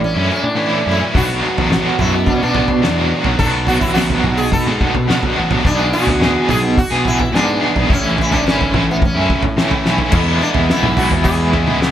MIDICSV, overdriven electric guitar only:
0, 0, Header, 1, 3, 480
1, 0, Start_track
1, 0, Tempo, 561798
1, 983, Time_signature, 4, 2, 24, 8
1, 10177, End_track
2, 0, Start_track
2, 0, Title_t, "Overdriven electric guitar"
2, 0, Program_c, 0, 29
2, 123, Note_on_c, 0, 64, 61
2, 134, Note_on_c, 0, 61, 57
2, 136, Note_on_c, 0, 57, 51
2, 360, Note_off_c, 0, 64, 0
2, 361, Note_off_c, 0, 61, 0
2, 365, Note_off_c, 0, 57, 0
2, 472, Note_on_c, 0, 45, 77
2, 478, Note_on_c, 0, 52, 74
2, 482, Note_on_c, 0, 57, 86
2, 482, Note_on_c, 0, 61, 78
2, 489, Note_on_c, 0, 64, 84
2, 706, Note_off_c, 0, 52, 0
2, 717, Note_off_c, 0, 61, 0
2, 717, Note_on_c, 0, 52, 67
2, 725, Note_off_c, 0, 64, 0
2, 727, Note_on_c, 0, 61, 66
2, 728, Note_off_c, 0, 57, 0
2, 731, Note_on_c, 0, 57, 68
2, 736, Note_on_c, 0, 64, 70
2, 836, Note_off_c, 0, 64, 0
2, 846, Note_on_c, 0, 64, 60
2, 848, Note_off_c, 0, 61, 0
2, 858, Note_on_c, 0, 61, 57
2, 863, Note_off_c, 0, 57, 0
2, 866, Note_on_c, 0, 57, 52
2, 954, Note_off_c, 0, 45, 0
2, 955, Note_off_c, 0, 52, 0
2, 960, Note_off_c, 0, 64, 0
2, 966, Note_off_c, 0, 61, 0
2, 967, Note_off_c, 0, 57, 0
2, 970, Note_on_c, 0, 47, 74
2, 971, Note_on_c, 0, 59, 81
2, 974, Note_on_c, 0, 54, 83
2, 975, Note_on_c, 0, 62, 87
2, 984, Note_on_c, 0, 66, 82
2, 1207, Note_off_c, 0, 54, 0
2, 1208, Note_off_c, 0, 59, 0
2, 1210, Note_on_c, 0, 54, 59
2, 1212, Note_on_c, 0, 59, 69
2, 1217, Note_off_c, 0, 66, 0
2, 1221, Note_off_c, 0, 62, 0
2, 1221, Note_on_c, 0, 66, 71
2, 1224, Note_on_c, 0, 62, 70
2, 1337, Note_off_c, 0, 66, 0
2, 1340, Note_on_c, 0, 66, 62
2, 1343, Note_off_c, 0, 62, 0
2, 1346, Note_on_c, 0, 62, 54
2, 1352, Note_off_c, 0, 59, 0
2, 1356, Note_on_c, 0, 59, 49
2, 1462, Note_off_c, 0, 47, 0
2, 1466, Note_on_c, 0, 47, 83
2, 1468, Note_off_c, 0, 54, 0
2, 1472, Note_off_c, 0, 59, 0
2, 1472, Note_on_c, 0, 54, 86
2, 1475, Note_on_c, 0, 59, 88
2, 1476, Note_off_c, 0, 62, 0
2, 1479, Note_off_c, 0, 66, 0
2, 1479, Note_on_c, 0, 62, 93
2, 1482, Note_on_c, 0, 66, 94
2, 1698, Note_off_c, 0, 54, 0
2, 1702, Note_on_c, 0, 54, 62
2, 1705, Note_off_c, 0, 59, 0
2, 1708, Note_on_c, 0, 59, 63
2, 1710, Note_off_c, 0, 62, 0
2, 1713, Note_on_c, 0, 62, 72
2, 1715, Note_off_c, 0, 66, 0
2, 1719, Note_on_c, 0, 66, 79
2, 1821, Note_off_c, 0, 54, 0
2, 1821, Note_off_c, 0, 66, 0
2, 1824, Note_off_c, 0, 62, 0
2, 1830, Note_off_c, 0, 59, 0
2, 2064, Note_on_c, 0, 66, 60
2, 2067, Note_on_c, 0, 62, 58
2, 2078, Note_on_c, 0, 59, 49
2, 2292, Note_off_c, 0, 66, 0
2, 2301, Note_off_c, 0, 62, 0
2, 2305, Note_off_c, 0, 59, 0
2, 2404, Note_off_c, 0, 47, 0
2, 2407, Note_on_c, 0, 47, 81
2, 2410, Note_on_c, 0, 54, 83
2, 2417, Note_on_c, 0, 59, 82
2, 2423, Note_on_c, 0, 62, 86
2, 2423, Note_on_c, 0, 66, 85
2, 2650, Note_off_c, 0, 54, 0
2, 2660, Note_on_c, 0, 54, 67
2, 2665, Note_off_c, 0, 59, 0
2, 2666, Note_off_c, 0, 62, 0
2, 2668, Note_on_c, 0, 59, 65
2, 2670, Note_on_c, 0, 62, 72
2, 2671, Note_off_c, 0, 66, 0
2, 2681, Note_on_c, 0, 66, 66
2, 2772, Note_off_c, 0, 66, 0
2, 2783, Note_on_c, 0, 66, 66
2, 2789, Note_off_c, 0, 62, 0
2, 2793, Note_off_c, 0, 59, 0
2, 2793, Note_on_c, 0, 62, 63
2, 2796, Note_on_c, 0, 59, 57
2, 2889, Note_off_c, 0, 54, 0
2, 2892, Note_off_c, 0, 47, 0
2, 2896, Note_on_c, 0, 47, 83
2, 2899, Note_on_c, 0, 54, 79
2, 2901, Note_off_c, 0, 62, 0
2, 2902, Note_off_c, 0, 66, 0
2, 2904, Note_on_c, 0, 62, 90
2, 2905, Note_off_c, 0, 59, 0
2, 2908, Note_on_c, 0, 59, 89
2, 2913, Note_on_c, 0, 66, 89
2, 3127, Note_off_c, 0, 54, 0
2, 3136, Note_off_c, 0, 59, 0
2, 3137, Note_on_c, 0, 54, 60
2, 3140, Note_on_c, 0, 59, 71
2, 3141, Note_off_c, 0, 62, 0
2, 3142, Note_off_c, 0, 66, 0
2, 3145, Note_on_c, 0, 62, 67
2, 3152, Note_on_c, 0, 66, 70
2, 3252, Note_off_c, 0, 66, 0
2, 3262, Note_on_c, 0, 66, 63
2, 3267, Note_off_c, 0, 62, 0
2, 3271, Note_off_c, 0, 59, 0
2, 3271, Note_on_c, 0, 62, 58
2, 3275, Note_on_c, 0, 59, 51
2, 3373, Note_off_c, 0, 47, 0
2, 3374, Note_off_c, 0, 54, 0
2, 3376, Note_on_c, 0, 47, 92
2, 3380, Note_off_c, 0, 66, 0
2, 3384, Note_on_c, 0, 54, 82
2, 3386, Note_off_c, 0, 59, 0
2, 3389, Note_off_c, 0, 62, 0
2, 3390, Note_on_c, 0, 59, 92
2, 3390, Note_on_c, 0, 66, 87
2, 3392, Note_on_c, 0, 62, 88
2, 3611, Note_off_c, 0, 54, 0
2, 3622, Note_on_c, 0, 54, 63
2, 3624, Note_off_c, 0, 59, 0
2, 3627, Note_off_c, 0, 66, 0
2, 3628, Note_on_c, 0, 59, 67
2, 3636, Note_off_c, 0, 62, 0
2, 3637, Note_on_c, 0, 66, 69
2, 3639, Note_on_c, 0, 62, 68
2, 3739, Note_off_c, 0, 66, 0
2, 3745, Note_off_c, 0, 54, 0
2, 3745, Note_off_c, 0, 59, 0
2, 3745, Note_off_c, 0, 62, 0
2, 3983, Note_on_c, 0, 66, 68
2, 3993, Note_on_c, 0, 62, 64
2, 4004, Note_on_c, 0, 59, 55
2, 4211, Note_off_c, 0, 66, 0
2, 4218, Note_off_c, 0, 59, 0
2, 4221, Note_off_c, 0, 62, 0
2, 4333, Note_off_c, 0, 47, 0
2, 4336, Note_on_c, 0, 47, 73
2, 4338, Note_on_c, 0, 54, 77
2, 4345, Note_on_c, 0, 59, 90
2, 4349, Note_on_c, 0, 66, 81
2, 4350, Note_on_c, 0, 62, 87
2, 4567, Note_off_c, 0, 54, 0
2, 4573, Note_off_c, 0, 59, 0
2, 4573, Note_off_c, 0, 62, 0
2, 4577, Note_on_c, 0, 54, 65
2, 4579, Note_off_c, 0, 66, 0
2, 4583, Note_on_c, 0, 59, 68
2, 4584, Note_on_c, 0, 62, 72
2, 4590, Note_on_c, 0, 66, 72
2, 4699, Note_off_c, 0, 66, 0
2, 4707, Note_off_c, 0, 62, 0
2, 4709, Note_on_c, 0, 66, 63
2, 4717, Note_off_c, 0, 59, 0
2, 4717, Note_on_c, 0, 62, 58
2, 4727, Note_on_c, 0, 59, 54
2, 4808, Note_off_c, 0, 47, 0
2, 4809, Note_off_c, 0, 54, 0
2, 4814, Note_off_c, 0, 66, 0
2, 4818, Note_off_c, 0, 62, 0
2, 4821, Note_on_c, 0, 47, 84
2, 4824, Note_off_c, 0, 59, 0
2, 4829, Note_on_c, 0, 52, 77
2, 4833, Note_on_c, 0, 59, 79
2, 4835, Note_on_c, 0, 62, 94
2, 4841, Note_on_c, 0, 68, 81
2, 5058, Note_off_c, 0, 59, 0
2, 5062, Note_off_c, 0, 52, 0
2, 5064, Note_off_c, 0, 62, 0
2, 5066, Note_on_c, 0, 52, 71
2, 5068, Note_on_c, 0, 59, 69
2, 5074, Note_on_c, 0, 62, 70
2, 5076, Note_off_c, 0, 68, 0
2, 5079, Note_on_c, 0, 68, 72
2, 5180, Note_off_c, 0, 68, 0
2, 5181, Note_off_c, 0, 62, 0
2, 5183, Note_on_c, 0, 68, 63
2, 5184, Note_off_c, 0, 59, 0
2, 5191, Note_on_c, 0, 62, 60
2, 5194, Note_on_c, 0, 59, 52
2, 5284, Note_off_c, 0, 47, 0
2, 5295, Note_on_c, 0, 47, 88
2, 5298, Note_off_c, 0, 59, 0
2, 5299, Note_off_c, 0, 62, 0
2, 5301, Note_off_c, 0, 52, 0
2, 5304, Note_on_c, 0, 52, 90
2, 5308, Note_on_c, 0, 59, 88
2, 5310, Note_on_c, 0, 62, 91
2, 5312, Note_off_c, 0, 68, 0
2, 5315, Note_on_c, 0, 68, 97
2, 5531, Note_off_c, 0, 59, 0
2, 5532, Note_off_c, 0, 52, 0
2, 5535, Note_on_c, 0, 52, 64
2, 5539, Note_off_c, 0, 62, 0
2, 5541, Note_on_c, 0, 59, 68
2, 5549, Note_on_c, 0, 62, 70
2, 5550, Note_off_c, 0, 68, 0
2, 5553, Note_on_c, 0, 68, 74
2, 5651, Note_off_c, 0, 62, 0
2, 5655, Note_off_c, 0, 59, 0
2, 5657, Note_off_c, 0, 68, 0
2, 5662, Note_off_c, 0, 52, 0
2, 5781, Note_off_c, 0, 47, 0
2, 5903, Note_on_c, 0, 68, 66
2, 5912, Note_on_c, 0, 62, 53
2, 5918, Note_on_c, 0, 59, 52
2, 6141, Note_off_c, 0, 62, 0
2, 6145, Note_off_c, 0, 59, 0
2, 6150, Note_off_c, 0, 68, 0
2, 6253, Note_on_c, 0, 47, 74
2, 6260, Note_on_c, 0, 52, 80
2, 6265, Note_on_c, 0, 59, 79
2, 6265, Note_on_c, 0, 62, 85
2, 6271, Note_on_c, 0, 68, 87
2, 6496, Note_off_c, 0, 62, 0
2, 6498, Note_off_c, 0, 52, 0
2, 6498, Note_off_c, 0, 59, 0
2, 6501, Note_on_c, 0, 52, 61
2, 6507, Note_on_c, 0, 62, 74
2, 6508, Note_on_c, 0, 59, 71
2, 6512, Note_off_c, 0, 68, 0
2, 6516, Note_on_c, 0, 68, 76
2, 6618, Note_off_c, 0, 68, 0
2, 6620, Note_off_c, 0, 62, 0
2, 6621, Note_on_c, 0, 68, 64
2, 6628, Note_off_c, 0, 59, 0
2, 6630, Note_on_c, 0, 62, 57
2, 6638, Note_on_c, 0, 59, 51
2, 6725, Note_off_c, 0, 47, 0
2, 6734, Note_off_c, 0, 62, 0
2, 6736, Note_on_c, 0, 45, 90
2, 6738, Note_off_c, 0, 59, 0
2, 6740, Note_off_c, 0, 52, 0
2, 6743, Note_on_c, 0, 52, 77
2, 6744, Note_on_c, 0, 57, 86
2, 6744, Note_on_c, 0, 61, 86
2, 6751, Note_off_c, 0, 68, 0
2, 6754, Note_on_c, 0, 64, 91
2, 6965, Note_off_c, 0, 52, 0
2, 6968, Note_off_c, 0, 57, 0
2, 6975, Note_on_c, 0, 52, 66
2, 6977, Note_off_c, 0, 61, 0
2, 6978, Note_on_c, 0, 57, 73
2, 6980, Note_off_c, 0, 64, 0
2, 6988, Note_on_c, 0, 61, 65
2, 6991, Note_on_c, 0, 64, 68
2, 7091, Note_off_c, 0, 64, 0
2, 7101, Note_on_c, 0, 64, 61
2, 7102, Note_off_c, 0, 61, 0
2, 7108, Note_off_c, 0, 57, 0
2, 7112, Note_on_c, 0, 61, 60
2, 7118, Note_on_c, 0, 57, 46
2, 7205, Note_off_c, 0, 45, 0
2, 7215, Note_on_c, 0, 45, 90
2, 7216, Note_off_c, 0, 52, 0
2, 7218, Note_off_c, 0, 61, 0
2, 7219, Note_off_c, 0, 57, 0
2, 7219, Note_off_c, 0, 64, 0
2, 7226, Note_on_c, 0, 52, 83
2, 7228, Note_on_c, 0, 61, 88
2, 7229, Note_on_c, 0, 64, 87
2, 7230, Note_on_c, 0, 57, 85
2, 7449, Note_off_c, 0, 52, 0
2, 7459, Note_off_c, 0, 57, 0
2, 7459, Note_on_c, 0, 52, 67
2, 7465, Note_off_c, 0, 61, 0
2, 7466, Note_off_c, 0, 64, 0
2, 7469, Note_on_c, 0, 57, 64
2, 7475, Note_on_c, 0, 61, 76
2, 7476, Note_on_c, 0, 64, 74
2, 7578, Note_off_c, 0, 64, 0
2, 7582, Note_off_c, 0, 61, 0
2, 7585, Note_off_c, 0, 52, 0
2, 7586, Note_off_c, 0, 57, 0
2, 7699, Note_off_c, 0, 45, 0
2, 7815, Note_on_c, 0, 64, 65
2, 7825, Note_on_c, 0, 61, 56
2, 7831, Note_on_c, 0, 57, 55
2, 8046, Note_off_c, 0, 64, 0
2, 8054, Note_off_c, 0, 61, 0
2, 8056, Note_off_c, 0, 57, 0
2, 8174, Note_on_c, 0, 45, 83
2, 8182, Note_on_c, 0, 52, 72
2, 8187, Note_on_c, 0, 57, 82
2, 8190, Note_on_c, 0, 61, 82
2, 8191, Note_on_c, 0, 64, 88
2, 8410, Note_off_c, 0, 52, 0
2, 8414, Note_off_c, 0, 57, 0
2, 8421, Note_off_c, 0, 61, 0
2, 8421, Note_on_c, 0, 52, 69
2, 8424, Note_on_c, 0, 57, 61
2, 8425, Note_off_c, 0, 64, 0
2, 8431, Note_on_c, 0, 61, 68
2, 8435, Note_on_c, 0, 64, 78
2, 8536, Note_off_c, 0, 64, 0
2, 8546, Note_on_c, 0, 64, 60
2, 8548, Note_off_c, 0, 61, 0
2, 8553, Note_off_c, 0, 57, 0
2, 8558, Note_on_c, 0, 61, 52
2, 8563, Note_on_c, 0, 57, 51
2, 8642, Note_off_c, 0, 45, 0
2, 8646, Note_off_c, 0, 52, 0
2, 8648, Note_off_c, 0, 64, 0
2, 8655, Note_off_c, 0, 61, 0
2, 8657, Note_off_c, 0, 57, 0
2, 8666, Note_on_c, 0, 52, 73
2, 8669, Note_on_c, 0, 56, 83
2, 8678, Note_on_c, 0, 59, 85
2, 8686, Note_on_c, 0, 64, 78
2, 9836, Note_off_c, 0, 64, 0
2, 9844, Note_off_c, 0, 52, 0
2, 9844, Note_off_c, 0, 59, 0
2, 9845, Note_off_c, 0, 56, 0
2, 9847, Note_on_c, 0, 64, 81
2, 9854, Note_on_c, 0, 59, 75
2, 9856, Note_on_c, 0, 56, 69
2, 9860, Note_on_c, 0, 52, 67
2, 10069, Note_off_c, 0, 52, 0
2, 10075, Note_off_c, 0, 64, 0
2, 10079, Note_off_c, 0, 59, 0
2, 10079, Note_on_c, 0, 52, 66
2, 10080, Note_off_c, 0, 56, 0
2, 10094, Note_on_c, 0, 56, 71
2, 10096, Note_on_c, 0, 64, 74
2, 10097, Note_on_c, 0, 59, 71
2, 10177, Note_off_c, 0, 52, 0
2, 10177, Note_off_c, 0, 56, 0
2, 10177, Note_off_c, 0, 59, 0
2, 10177, Note_off_c, 0, 64, 0
2, 10177, End_track
3, 0, Start_track
3, 0, Title_t, "Muted overdriven electric guitar strokes"
3, 368, Note_on_c, 9, 29, 37
3, 454, Note_off_c, 9, 29, 0
3, 1827, Note_on_c, 9, 29, 45
3, 1913, Note_off_c, 9, 29, 0
3, 2303, Note_on_c, 9, 29, 44
3, 2388, Note_off_c, 9, 29, 0
3, 3750, Note_on_c, 9, 29, 49
3, 3835, Note_off_c, 9, 29, 0
3, 4222, Note_on_c, 9, 29, 42
3, 4307, Note_off_c, 9, 29, 0
3, 5660, Note_on_c, 9, 29, 45
3, 5746, Note_off_c, 9, 29, 0
3, 6151, Note_on_c, 9, 29, 43
3, 6237, Note_off_c, 9, 29, 0
3, 7588, Note_on_c, 9, 29, 47
3, 7673, Note_off_c, 9, 29, 0
3, 8057, Note_on_c, 9, 29, 46
3, 8142, Note_off_c, 9, 29, 0
3, 10177, End_track
0, 0, End_of_file